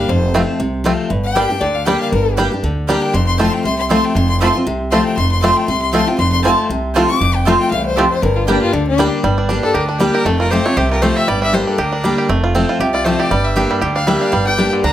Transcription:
0.00 F5
0.09 F1 F2 C5
0.34 F3 A3 C4 F4
0.59 C2 C3
0.84 F3 A3 C4 F4
1.10 G1 G2
1.24 G5
1.35 G3 A#3 D4 G4 D5 G5
1.50 D4 G4
1.61 D2 D3 D5
1.75 F5
1.86 G3 A#3 D4 G4 D5 G5
2.00 F5
2.12 G1 G2 A#4
2.37 G3 A#3 D4 G4 D5 G5
2.52 D4 G4
2.63 D2 D3
2.87 G3 A#3 D4 G4 D5 G5 A#5
3.02 G5
3.13 F1 F2 C6
3.27 C6
3.38 F3 A3 C4 F4 C5 A5 C6
3.53 G5
3.64 C2 C3 C6
3.79 C6
3.89 F3 A3 C4 F4 C5 A5 C6
4.05 G5
4.15 F1 F2 C6
4.30 C6
4.40 F3 A3 C4 F4 C5 A5 C6
4.55 C4 F4
4.66 C2 C3
4.91 F3 A3 C4 F4 C5 A5 C6
5.06 G5
5.17 F1 F2 C6
5.32 C6
5.42 F3 A3 C4 F4 C5 A5 C6
5.56 G5
5.68 C2 C3 C6
5.82 C6
5.93 F3 A3 C4 F4 C5 A5 C6
6.07 C4 F4 G5
6.18 F1 F2 C6
6.33 C6
6.43 F3 A3 C4 F4 C5 A5
6.69 C2 C3
6.94 F3 A3 C4 F4 C5 A5
7.08 C4 F4 D6
7.20 F1 F2
7.35 G5
7.45 F3 A3 C4 F4 C5 F5 A5
7.60 G5
7.71 C2 E2 F5
7.86 C5
7.96 F2 A3 C4 F4 G4 C5 A5
8.10 C5
8.22 G1 G2 A#4
8.36 F4
8.47 G3 A#3 D4 G4 D5 G5
8.62 F4
8.73 D2 D3 D4
8.87 D4
8.98 G3 A#3 D4 G4 D5 G5
9.23 G1 G2 G3
9.38 D4
9.49 G3 A#3 D4 G4
9.63 D4 A4
9.74 D2 D3 G4 A#4
9.87 D4
9.99 G3 A#3 D4 G4
10.14 G4 A#4
10.25 F1 F2 A3 A4
10.39 F4 A#4
10.50 F3 A3 C4 F4 G4 C5
10.65 A3 C4 F4 C#5
10.76 C2 C3 G4 C5
10.91 F4 A#4
11.02 F3 A3 C4 F4 C5
11.16 C4 E5
11.27 G1 G2 G3 D5
11.42 D4 E5
11.53 G3 A#3 D4 G4 C5
11.67 D4 A4
11.78 D2 D3 G4 A#4
11.92 D4
12.04 G3 A#3 D4 G4
12.18 G4
12.29 F1 F2 A3
12.44 F4
12.55 F3 A3 C4 F4
12.69 F4
12.79 C2 C3 G4
12.93 F4 D5
13.05 F3 A3 C4 F4 C5
13.19 G4 D5
13.31 G1 G2 G3
13.44 E5
13.56 G3 A#3 D4 G4
13.71 G3
13.81 D2 D3 G4
13.95 D4 F5
14.07 G3 A#3 D4 G4 E5
14.21 D4 F5
14.32 G1 G2 G3
14.47 D4 G5
14.58 G3 A#3 D4 G4
14.73 D3
14.83 D2 D3 D4 A#5

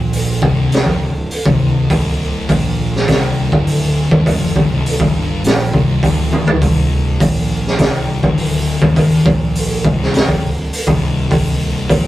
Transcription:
Already playing: A#1 A#2
0.13 open hi-hat
0.42 C1 C2, kick
0.72 snare, open hi-hat
0.86 F1 F2, kick
1.01 C1 C2
1.31 open hi-hat
1.45 C1 C2, kick
1.90 C1 C2, kick, open hi-hat
2.49 A#1 A#2, kick, open hi-hat
2.96 snare
3.08 C1 C2, kick, snare, open hi-hat
3.52 D1 D2, kick
3.67 open hi-hat
4.11 D#1 D#2, kick
4.26 D#1 D#2, kick, open hi-hat
4.41 F1 F2
4.56 D1 D2, kick
4.70 C1 C2
4.86 open hi-hat
5.00 D1 D2, kick
5.15 G1 G2
5.44 A#1 A#2, snare, open hi-hat
5.73 C1 C2, kick
6.02 D1 D2, kick, open hi-hat
6.32 high tom
6.47 floor tom
6.62 C1 C2, kick, open hi-hat
7.20 A#1 A#2, kick, open hi-hat
7.67 snare
7.79 C2, kick, snare, open hi-hat
8.23 D1 D2, kick
8.38 open hi-hat
8.81 D#1 D#2, kick
8.96 kick, open hi-hat
9.25 A#1 A#2, kick
9.55 open hi-hat
9.85 C1 C2, kick
10.02 snare
10.14 snare, open hi-hat
10.28 F1 F2, kick
10.43 C1 C2
10.73 open hi-hat
10.87 C1 C2, kick
11.30 C1 C2, kick, open hi-hat
11.89 A#1 A#2, kick, open hi-hat

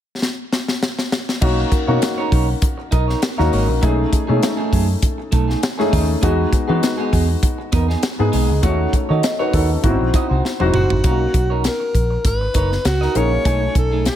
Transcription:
0.22 snare
0.53 snare
0.68 snare
0.83 snare
0.99 snare
1.12 snare
1.29 snare
1.41 B1 A#3 C#4 D#4 F#4 A#4 C#5, kick, crash
1.71 muted clean electric guitar stroke, kick, closed hi-hat
1.87 B2 A#3 C#4 D#4 F#4 A#4 C#5
2.02 snare, closed hi-hat
2.18 D#4 A#4 C#5
2.31 B1 D#4 A#4 C#5, kick, open hi-hat
2.48 muted clean electric guitar stroke
2.62 muted clean electric guitar stroke, kick, closed hi-hat
2.78 muted clean electric guitar stroke
2.91 B1 D#4 A#4 D#5, kick, closed hi-hat
3.08 D#4 A#4 C#5, snare
3.22 snare, closed hi-hat
3.38 D#2 A#3 C#4 D#4 F#4 A#4 C#5, snare
3.52 G#1 D#4 A#4 C#5, open hi-hat
3.68 A#1, muted clean electric guitar stroke
3.81 B1 A3 C#4 D#4 G#4, kick, closed hi-hat
4.12 muted clean electric guitar stroke, kick, closed hi-hat
4.27 B2 A3 C#4 D#4 G#4
4.42 muted clean electric guitar stroke, snare, closed hi-hat
4.57 A3 D#4 G#4
4.71 F#2 A3 D#4 G#4, kick, open hi-hat
4.88 muted clean electric guitar stroke
5.02 muted clean electric guitar stroke, kick, closed hi-hat
5.18 muted clean electric guitar stroke
5.32 B1 A3 D#4 A4, kick, closed hi-hat
5.48 A3 D#4 G#4, snare
5.62 muted clean electric guitar stroke, snare, closed hi-hat
5.78 A3 C#4 D#4 G#4, snare
5.91 D#2 A3 D#4 G#4, kick, open hi-hat
6.07 muted clean electric guitar stroke
6.21 E2 G#3 B3 D#4 F#4 G#4, kick, closed hi-hat
6.52 muted clean electric guitar stroke, kick, closed hi-hat
6.68 E3 G#3 B3 D#4 F#4 G#4
6.82 muted clean electric guitar stroke, snare, closed hi-hat
6.98 B3 D#4 G#4
7.12 E2 B3 D#4 G#4, kick, open hi-hat
7.28 muted clean electric guitar stroke
7.43 muted clean electric guitar stroke, kick, closed hi-hat
7.58 muted clean electric guitar stroke
7.72 E2 B3 D#4 A#4, kick, closed hi-hat
7.88 B3 D#4 G#4, snare
8.03 snare, closed hi-hat
8.19 G#2 G#3 B3 D#4 G#4, muted clean electric guitar stroke
8.32 B1 B3 D#4 G#4, open hi-hat
8.49 C#2, muted clean electric guitar stroke
8.62 D#2 A3 C#4 D#4 F#4 C#5, kick, closed hi-hat
8.93 F#4 C#5, muted clean electric guitar stroke, kick, closed hi-hat
9.09 D#3 D#4 F#4 A4 C#5 D#5
9.23 muted clean electric guitar stroke, snare, closed hi-hat
9.39 D#4 F#4 B4 C#5
9.53 D#2 D#4 F#4 A4 C#5, kick, open hi-hat
9.70 C#4 F#4, muted clean electric guitar stroke
9.83 G#1 B3 D#4 E4 F#4, muted clean electric guitar stroke, kick, closed hi-hat
9.89 C4
9.99 A#1, muted clean electric guitar stroke
10.13 E4 F#4 D#5, kick, closed hi-hat
10.29 C2 E4 F#4 C5
10.44 muted clean electric guitar stroke, snare
10.60 E1 C4 D#4 E4 F#4 C5, high tom
10.74 F#1 E4 F#4 C5, mid tom
10.90 G#1, muted clean electric guitar stroke, floor tom
11.04 B1 A#3 C#4 D#4 F4 A#4 C#5, kick, closed hi-hat
11.12 F#4
11.20 muted clean electric guitar stroke
11.34 B1, muted clean electric guitar stroke, kick, closed hi-hat
11.50 D#4 A#4 C#5
11.64 A#4, muted clean electric guitar stroke, snare, closed hi-hat
11.80 muted clean electric guitar stroke
11.95 A#1, kick, closed hi-hat
12.10 muted clean electric guitar stroke
12.25 G#1 B4, muted clean electric guitar stroke, kick, closed hi-hat
12.41 muted clean electric guitar stroke
12.54 F#1 D#4 A#4 C#5, kick, closed hi-hat
12.71 muted clean electric guitar stroke, snare
12.85 C#2 F#4, muted clean electric guitar stroke, snare, closed hi-hat
13.01 D#4 A#4 D#5, snare
13.14 A#1 A#3 C#4 D#4 G#4 A#4 C#5, closed hi-hat
13.32 muted clean electric guitar stroke
13.45 B1 A3 C#4 D#4 G#4 G#5, kick, closed hi-hat
13.61 muted clean electric guitar stroke
13.75 B1 A4, muted clean electric guitar stroke, kick, closed hi-hat
13.91 A3 D#4 G#4
14.05 G#4, muted clean electric guitar stroke, snare, closed hi-hat

